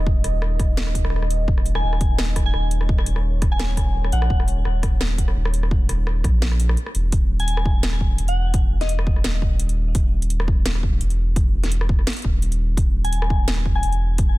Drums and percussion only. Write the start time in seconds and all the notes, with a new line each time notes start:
0.07 kick
0.24 cross-stick, closed hi-hat
0.42 cross-stick
0.60 kick, cross-stick, closed hi-hat
0.77 snare
0.87 cross-stick
0.95 kick, closed hi-hat
1.05 cross-stick
1.10 cross-stick
1.16 cross-stick
1.22 cross-stick
1.31 closed hi-hat
1.48 kick
1.58 cross-stick
1.66 closed hi-hat
1.75 cross-stick
1.93 cross-stick
2.01 kick, closed hi-hat
2.19 cross-stick, snare
2.36 kick, cross-stick, closed hi-hat
2.54 cross-stick
2.71 closed hi-hat
2.81 cross-stick
2.89 kick
2.98 cross-stick
3.06 closed hi-hat
3.16 cross-stick
3.42 kick, cross-stick, closed hi-hat
3.60 cross-stick, snare
3.77 kick, cross-stick, closed hi-hat
4.04 cross-stick
4.12 closed hi-hat
4.22 cross-stick
4.30 kick
4.40 cross-stick
4.48 closed hi-hat
4.65 cross-stick
4.83 kick, cross-stick, closed hi-hat
5.01 cross-stick, snare
5.18 kick, closed hi-hat
5.28 cross-stick
5.45 cross-stick
5.54 closed hi-hat
5.63 cross-stick
5.71 kick
5.89 cross-stick, closed hi-hat
6.07 cross-stick
6.24 kick, cross-stick, closed hi-hat
6.42 snare
6.52 cross-stick
6.60 closed hi-hat
6.69 cross-stick
6.77 closed hi-hat
6.87 cross-stick
6.95 closed hi-hat
7.12 kick, closed hi-hat
7.40 closed hi-hat
7.48 closed hi-hat
7.57 cross-stick
7.66 kick
7.83 snare, closed hi-hat
7.93 cross-stick
8.01 kick
8.18 closed hi-hat
8.28 closed hi-hat
8.54 kick, closed hi-hat
8.81 snare, closed hi-hat
8.89 closed hi-hat
8.99 cross-stick
9.07 kick
9.16 cross-stick
9.24 snare, closed hi-hat
9.42 kick
9.60 closed hi-hat
9.69 closed hi-hat
9.95 kick, closed hi-hat
10.22 closed hi-hat
10.30 closed hi-hat
10.40 cross-stick
10.48 kick
10.66 snare, closed hi-hat
10.75 cross-stick
10.83 kick
11.01 closed hi-hat
11.10 closed hi-hat
11.36 kick, closed hi-hat
11.64 snare, closed hi-hat
11.72 closed hi-hat
11.81 cross-stick
11.89 kick
11.99 cross-stick
12.07 snare, closed hi-hat
12.10 closed hi-hat
12.13 closed hi-hat
12.17 closed hi-hat
12.19 closed hi-hat
12.22 kick, closed hi-hat
12.42 closed hi-hat
12.52 closed hi-hat
12.77 kick, closed hi-hat
13.05 closed hi-hat
13.13 closed hi-hat
13.22 cross-stick
13.30 kick
13.48 snare, closed hi-hat
13.57 cross-stick
13.66 kick
13.83 closed hi-hat
13.93 closed hi-hat
14.18 kick, closed hi-hat